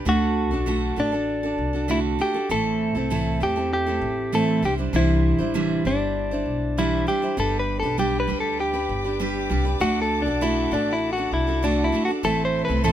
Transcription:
0.05 D2 D3 A3 D4 F#4 A4
0.51 B1 D4 F#4 A4
0.66 D3 A3 D4 F#4 A4
0.96 A1 A3 D4 F#4 A4
1.12 D4 F#4 A4
1.43 D4 F#4 A4
1.58 C2
1.73 D4 F#4 A4
1.88 D3 A3 D4 E4 F#4 A4
2.19 A3 D4 F#4 G4 A4
2.34 D4 F#4 A4
2.49 A1 A2 E3 A3 C4 E4 A4
2.95 C2 A3 C4 E4 A4
3.10 A2 E3 A3 C4 E4 A4
3.40 E2 A3 C4 E4 G4 A4
3.56 A3 C4 E4 A4
3.73 G4
3.86 A3 C4 E4 A4
4.01 A1
4.32 A2 E3 A3 C4 E4 A4
4.62 C2 G3 D4 E4 G4 C5
4.78 G3 D4 E4 C5
4.93 C2 C3 E3 G3 D4 E4 C5
5.38 A1 G3 D4 E4 C5
5.54 C3 E3 G3 D4 E4 C5
5.85 G1 G3 D4 E4 C5
6.31 G3 D4 E4 C5
6.46 B1
6.78 E3 G3 D4 E4 C5
7.07 G3 D4 E4 G4 C5
7.22 G3 D4 E4 C5
7.37 G1 G3 D4 G4 A4 B4 D5 G5 D6
7.59 B4
7.80 B1 A4 B4
7.84 D4 G4
7.98 G3 D4 G4 B4
8.20 B4
8.27 D2 G3 D4 G4 B4
8.40 A4
8.60 G4
8.73 D4 G4 B4
8.89 G1
9.04 D4 G4 B4
9.20 G3 D4 G4 B4
9.50 C2 G3 D4 G4 B4
9.65 D4 G4 B4
9.80 D2 D3 A3 D4 F#4 A4 F#5
10.02 A4
10.22 D4 A4
10.26 B1 D4 F#4
10.41 D3 A3 D4 E4 F#4 A4
10.71 A1 A3 D4 F#4 A4
10.93 E4
11.13 F#4
11.17 D4 F#4 A4
11.32 C2 E4
11.47 D4 F#4 A4
11.63 D3 A3 D4 F#4 A4
11.84 E4
11.92 A3 D4 F#4 A4
12.05 F#4 A4
12.10 D4
12.23 A1 A2 E3 A3 C4 E4 A4 C5 E5 C6
12.45 C5
12.65 A4 B4
12.69 C2 A3 C4 E4
12.84 A2 E3 A3 C4 E4 A4

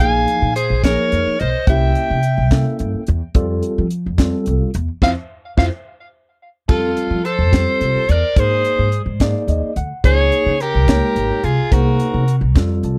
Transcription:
0.00 A#1 F3 A#3 D#4 G#4 F5 G#5
0.28 closed hi-hat
0.42 A#2
0.56 G#4 C5, closed hi-hat
0.70 A#1
0.84 F3 A#3 D#4 G#4 A#4 C#5, kick, snare, closed hi-hat
1.12 F2, closed hi-hat
1.26 muted upright bass stroke
1.39 B1 C5 D#5, closed hi-hat
1.67 C2 A#3 C#4 E4 G4 E5 G5, kick, closed hi-hat
1.95 closed hi-hat
2.10 C3
2.23 closed hi-hat
2.38 C2
2.51 A#3 C#4 E4 A4, kick, snare, closed hi-hat
2.79 G2, closed hi-hat
2.94 muted upright bass stroke
3.07 E2, closed hi-hat
3.35 F2 G3 C4 F4 A4, kick, closed hi-hat
3.63 closed hi-hat
3.78 F3
3.90 closed hi-hat
4.06 F2
4.18 G3 C4 F4 A4, kick, snare, closed hi-hat
4.46 C2, closed hi-hat
4.62 muted upright bass stroke
4.74 E2, closed hi-hat
5.02 F2 C4 E4 F4 C5 E5 F5, kick, snare
5.57 F2 C4 E4 F4 C5 E5 F5, kick, snare
6.68 F2 G3 C4 F4 A4, kick, crash
6.97 closed hi-hat
7.10 F3
7.25 A4 C5, closed hi-hat
7.39 F2
7.52 G3 C4 F4 G4, kick, snare, closed hi-hat
7.81 C2, closed hi-hat
7.95 muted upright bass stroke
8.09 E2 A#4 D5, closed hi-hat
8.36 G#2 A#3 D#4 G#4 C5, kick, closed hi-hat
8.65 closed hi-hat
8.79 G#2
8.92 closed hi-hat
9.06 G#2
9.20 A#3 D#4 G#4 D5, kick, snare, closed hi-hat
9.48 D#2 D#5, closed hi-hat
9.63 muted upright bass stroke
9.76 D2 F#5, closed hi-hat
10.04 C#2 A#3 D#4 G#4 C#5, kick, closed hi-hat
10.32 closed hi-hat
10.46 C#3
10.60 G4 A#4, closed hi-hat
10.75 C#2
10.88 G#3 A#3 D#4 C#5, kick, snare, closed hi-hat
11.16 G#1, closed hi-hat
11.30 muted upright bass stroke
11.44 C2 F4 G#4, closed hi-hat
11.71 C2 A#3 D#4 F#4 G#4 A#4 C5, kick, closed hi-hat
12.00 closed hi-hat
12.14 C3
12.28 closed hi-hat
12.41 C2
12.55 F2 G3 C4 F4 A4, kick, snare, closed hi-hat
12.83 C2 A5, closed hi-hat

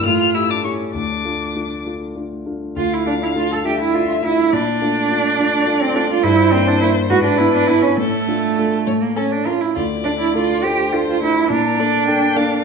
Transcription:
0.04 A2 F4 F6
0.34 A3 E4 G4 E6
0.49 D4 D6
0.64 A3 C#4 E4 G4 C#6
0.94 D2 D4 D6
1.24 A3 D4 F4
1.55 A3 D4 F4
1.86 A3 D4 F4
2.15 A3 D4 F4
2.46 A3 D4 F4
2.76 D2 F4 F5
2.93 E4
3.06 A3 D4 F4
3.22 E4
3.35 A3 D4 F4
3.52 A4
3.64 A3 D4 F4 G4 E5
3.81 E4
3.94 A3 D4 F4
4.09 F4
4.23 A3 D4 E4 F4
4.53 A#2 D4 D5
4.81 A3 D4 F4
5.10 A3 D4 F4
5.39 A3 D4 F4
5.67 A3 D4 F4
5.81 C4
5.95 A3 D4 F4
6.10 F4
6.23 G2 E4 C5
6.52 A#3 C4 D4 E4
6.67 D4
6.80 A#3 D4 E4
7.10 G#2 F#4 B4
7.24 D4
7.38 B3 D4 E4
7.53 D4
7.67 B3 D4 E4
7.82 C#4
7.97 A2 A3 A4
8.27 A3 D4 F4
8.57 A3 D4 F4
8.87 A2 C#5
9.02 A#3
9.16 A3 C#4 A4
9.32 D4
9.45 A3 C#4 F4 A4 A#4
9.61 E4
9.75 D2 F4 D5
10.04 A3 D4 A4
10.19 E4
10.34 A3 D4 F4 A4
10.63 A3 D4 G4 A4 C5
10.93 A3 D4 F4 A4
11.09 F4
11.21 A3 D4 E4 A4
11.50 A#2 D4 A#4
11.78 A#3 D4 A4 D5
12.07 A#3 D4 A4 G5
12.36 A#3 D4 A4 F5

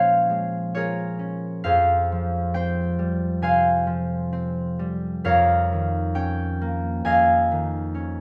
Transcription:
Already playing: A#2 F3 G#3 A#3 C#4 F4 C5 C#5 F5 G#5 A#5
0.30 G#3
0.75 F4 G#4 A#4 C#5
1.19 C#4
1.64 F2 G#4 C5 F5
2.12 F3
2.54 C4 C5 G5
2.99 G3
3.42 C3 C5 F5 G#5
3.87 F3
4.33 C4
4.79 G3
5.24 F2 A#4 C#5 F5
5.72 D#3
6.15 C#4 G5
6.61 A#3
7.05 F2 D#5 F5 G#5
7.51 D#3
7.94 C#4

